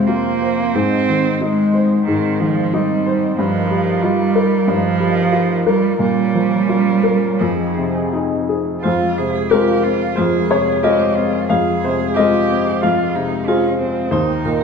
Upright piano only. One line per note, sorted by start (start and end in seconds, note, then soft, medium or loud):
0.00 0.77 F2 soft
0.00 0.77 C3 soft
0.00 0.08 F4 soft
0.00 0.42 C5 soft
0.08 0.61 F4 soft
0.42 0.75 C5 soft
0.74 2.02 G#2 soft
1.09 1.61 D#3 soft
1.41 1.94 D#4 soft
1.74 2.26 C5 soft
2.07 3.34 G#2 soft
2.41 2.93 D#3 soft
2.73 3.25 D#4 soft
3.06 3.38 C5 soft
3.38 4.64 G2 medium
3.71 4.22 G3 soft
4.03 4.55 F4 soft
4.35 4.87 A#4 soft
4.67 5.97 G2 soft
5.00 5.53 G3 soft
5.32 5.87 F4 soft
5.66 6.01 A#4 soft
5.99 7.36 A#2 medium
6.35 6.90 F3 soft
6.69 7.26 F4 soft
7.03 7.40 A#4 soft
7.41 8.81 F2 soft
7.77 8.35 C3 soft
8.13 8.71 D#4 soft
8.49 8.84 G#4 soft
8.83 10.14 F2 soft
8.83 9.47 C5 medium
9.19 9.72 C3 soft
9.51 9.82 G#3 soft
9.51 9.81 C4 soft
9.51 9.82 F4 soft
9.51 10.13 A#4 medium
9.84 10.38 C4 soft
10.16 11.46 F2 soft
10.16 10.48 C5 medium
10.51 11.04 C3 soft
10.51 10.82 C#5 medium
10.83 11.13 G#3 soft
10.83 11.13 C4 soft
10.83 11.13 F4 soft
10.83 11.45 D#5 medium
11.17 11.70 C4 soft
11.49 12.79 F2 soft
11.49 11.80 F5 medium
11.84 12.37 C3 soft
11.84 12.15 C5 medium
12.16 12.47 G#3 soft
12.16 12.47 C4 soft
12.16 12.47 F4 soft
12.16 12.78 D#5 medium
12.51 13.03 C4 soft
12.83 14.10 F2 soft
12.83 13.76 F5 medium
13.15 13.67 C3 soft
13.48 13.77 F4 soft
13.48 13.77 G#4 soft
13.48 13.77 C5 soft
13.79 14.12 C4 soft
14.11 14.64 D#2 medium
14.11 14.64 C5 medium
14.45 14.64 A#2 soft